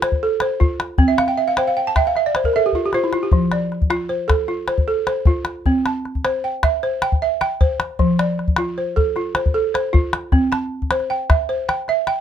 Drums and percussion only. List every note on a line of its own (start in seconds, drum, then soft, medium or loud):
0.02 calabash click medium
0.12 calabash thump soft
0.40 calabash click medium
0.61 calabash thump medium
0.80 calabash click medium
0.98 calabash thump medium
1.18 calabash click medium
1.28 calabash click soft
1.57 calabash click medium
1.96 calabash thump medium
1.96 calabash click medium
2.05 calabash click soft
2.16 calabash click soft
2.35 calabash click medium
2.44 calabash thump soft
2.53 calabash click soft
2.73 calabash thump soft
2.93 calabash click soft
3.13 calabash click soft
3.32 calabash thump medium
3.52 calabash click soft
3.72 calabash click soft
3.82 calabash thump soft
3.90 calabash click medium
4.30 calabash thump medium
4.30 calabash click medium
4.48 calabash click soft
4.68 calabash click medium
4.78 calabash thump soft
5.07 calabash click medium
5.25 calabash thump medium
5.45 calabash click medium
5.66 calabash thump medium
5.86 calabash click medium
6.05 calabash click soft
6.15 calabash thump soft
6.25 calabash click medium
6.63 calabash thump medium
6.63 calabash click medium
6.83 calabash click soft
7.02 calabash click medium
7.12 calabash thump soft
7.41 calabash click medium
7.61 calabash thump medium
7.80 calabash click medium
7.99 calabash thump medium
8.19 calabash click medium
8.39 calabash click soft
8.48 calabash thump soft
8.56 calabash click medium
8.97 calabash thump medium
9.16 calabash click soft
9.35 calabash click medium
9.46 calabash thump medium
9.75 calabash click medium
9.94 calabash thump medium
10.13 calabash click medium
10.32 calabash thump medium
10.32 calabash click soft
10.52 calabash click medium
10.82 calabash thump soft
10.91 calabash click medium
11.00 calabash click soft
11.11 calabash click soft
11.30 calabash thump medium
11.30 calabash click medium
11.69 calabash click medium
11.88 calabash click soft
12.07 calabash click medium